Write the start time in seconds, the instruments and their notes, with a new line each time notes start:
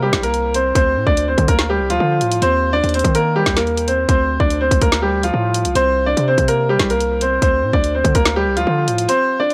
Already playing: 808-style bass C3
0.02 grand piano G3 G4
0.13 808-style bass C2, kick, snare
0.23 grand piano A#3 A#4, closed hi-hat
0.34 closed hi-hat
0.54 grand piano C4 C5, closed hi-hat
0.75 808-style bass D2, grand piano C4 C5, kick, closed hi-hat
0.96 808-style bass A2
1.06 808-style bass D2, grand piano D4 D5, kick
1.17 closed hi-hat
1.28 grand piano C4 C5
1.38 808-style bass D3, kick, closed hi-hat
1.48 808-style bass D2, grand piano A#3 A#4, kick, closed hi-hat
1.59 snare
1.70 grand piano G3 G4
1.79 808-style bass C2
1.90 808-style bass D2, grand piano F3 F4, closed hi-hat
2.00 808-style bass D3
2.21 808-style bass A2, closed hi-hat
2.32 closed hi-hat
2.42 808-style bass D#2, grand piano C4 C5, closed hi-hat
2.73 grand piano D4 D5
2.84 808-style bass D#2, closed hi-hat
2.89 closed hi-hat
2.94 grand piano C4 C5, closed hi-hat
2.99 closed hi-hat
3.04 808-style bass D#3, kick, closed hi-hat
3.15 grand piano A#3 A#4, closed hi-hat
3.36 grand piano G3 G4
3.46 808-style bass D#2, kick, snare
3.56 grand piano A#3 A#4, snare, closed hi-hat
3.67 closed hi-hat
3.77 closed hi-hat
3.88 grand piano C4 C5, closed hi-hat
4.09 808-style bass D2, grand piano C4 C5, kick, closed hi-hat
4.40 808-style bass D2, grand piano D4 D5, kick
4.50 closed hi-hat
4.61 grand piano C4 C5
4.71 808-style bass D2, kick, closed hi-hat
4.82 808-style bass D2, grand piano A#3 A#4, kick, closed hi-hat
4.92 snare
5.02 grand piano G3 G4
5.23 grand piano F3 F4, closed hi-hat
5.34 808-style bass A2
5.54 closed hi-hat
5.65 808-style bass C2, closed hi-hat
5.75 808-style bass C2, grand piano C4 C5, closed hi-hat
6.06 grand piano D4 D5
6.17 808-style bass C3, closed hi-hat
6.28 grand piano C4 C5
6.38 808-style bass C3, kick, closed hi-hat
6.48 grand piano A#3 A#4, closed hi-hat
6.69 grand piano G3 G4
6.79 808-style bass C2, kick, snare
6.90 grand piano A#3 A#4, closed hi-hat
7.00 closed hi-hat
7.21 grand piano C4 C5, closed hi-hat
7.42 808-style bass D2, grand piano C4 C5, kick, closed hi-hat
7.63 808-style bass A2
7.73 808-style bass D2, grand piano D4 D5, kick
7.84 closed hi-hat
7.95 grand piano C4 C5
8.04 808-style bass D3, kick, closed hi-hat
8.15 808-style bass D2, grand piano A#3 A#4, kick, closed hi-hat
8.25 snare
8.36 grand piano G3 G4
8.46 808-style bass C2
8.57 808-style bass D2, grand piano F3 F4, closed hi-hat
8.67 808-style bass D3
8.88 808-style bass A2, closed hi-hat
8.98 closed hi-hat
9.08 grand piano C4 C5, closed hi-hat
9.40 grand piano D4 D5
9.50 closed hi-hat